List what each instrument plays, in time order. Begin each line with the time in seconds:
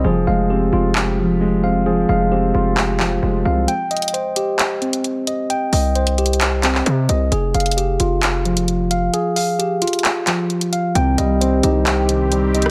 0.04 808-style bass F1, grand piano F3, tine electric piano G#4
0.27 808-style bass F1, grand piano G#3, tine electric piano F5
0.50 grand piano C4, tine electric piano G4
0.73 808-style bass F1, tine electric piano F4, grand piano F4
0.95 grand piano G4, clap
1.18 tine electric piano F3, grand piano F3
1.41 grand piano G#3
1.64 grand piano C4, tine electric piano F5
1.86 grand piano F3, tine electric piano G#4
2.09 808-style bass F1, grand piano G#3, tine electric piano F5
2.32 grand piano C4, tine electric piano G4
2.54 808-style bass F1, tine electric piano F4, grand piano F4
2.77 grand piano G4, clap
3.00 tine electric piano F3, grand piano F3, clap
3.23 808-style bass F1, grand piano G#3
3.45 808-style bass C2, grand piano C4, tine electric piano F5
3.68 tine electric piano G5, closed hi-hat
3.91 tine electric piano D#5, closed hi-hat
3.97 closed hi-hat
4.02 closed hi-hat
4.08 closed hi-hat
4.14 tine electric piano C5, closed hi-hat
4.36 tine electric piano G4, closed hi-hat
4.59 clap, closed hi-hat
4.82 tine electric piano C4, closed hi-hat
4.93 closed hi-hat
5.04 closed hi-hat
5.27 tine electric piano D#5, closed hi-hat
5.50 tine electric piano G5, closed hi-hat
5.73 808-style bass C2, tine electric piano D#5, open hi-hat
5.95 tine electric piano C5, closed hi-hat
6.07 closed hi-hat
6.18 tine electric piano G4, closed hi-hat
6.26 closed hi-hat
6.33 closed hi-hat
6.41 clap, closed hi-hat
6.63 tine electric piano C4, clap, closed hi-hat
6.75 clap
6.86 808-style bass C3, closed hi-hat
7.09 808-style bass C2, tine electric piano D#5, closed hi-hat
7.32 808-style bass F1, tine electric piano G#4, closed hi-hat
7.54 808-style bass F1, tine electric piano F5, closed hi-hat
7.60 closed hi-hat
7.66 closed hi-hat
7.71 closed hi-hat
7.77 tine electric piano G4, closed hi-hat
8.00 808-style bass F1, tine electric piano F4, closed hi-hat
8.23 clap, closed hi-hat
8.45 tine electric piano F3, closed hi-hat
8.57 closed hi-hat
8.68 closed hi-hat
8.91 tine electric piano F5, closed hi-hat
9.14 tine electric piano G#4, closed hi-hat
9.36 tine electric piano F5, open hi-hat
9.59 tine electric piano G4, closed hi-hat
9.82 tine electric piano F4, closed hi-hat
9.87 closed hi-hat
9.93 closed hi-hat
9.99 closed hi-hat
10.04 clap, closed hi-hat
10.27 tine electric piano F3, clap, closed hi-hat
10.50 closed hi-hat
10.61 closed hi-hat
10.73 tine electric piano F5, closed hi-hat
10.95 808-style bass C2, grand piano C3, analog synth pad D#3 C4 G4, tine electric piano G5, closed hi-hat
11.18 808-style bass C2, grand piano G3, tine electric piano D#5, closed hi-hat
11.41 grand piano C4, tine electric piano C5, closed hi-hat
11.63 808-style bass C2, grand piano D#4, tine electric piano G4, closed hi-hat
11.86 grand piano G4, clap, closed hi-hat
12.09 grand piano C3, tine electric piano C4, closed hi-hat
12.32 grand piano G3, closed hi-hat
12.54 grand piano C4, tine electric piano D#5, closed hi-hat
12.62 cross-stick, closed hi-hat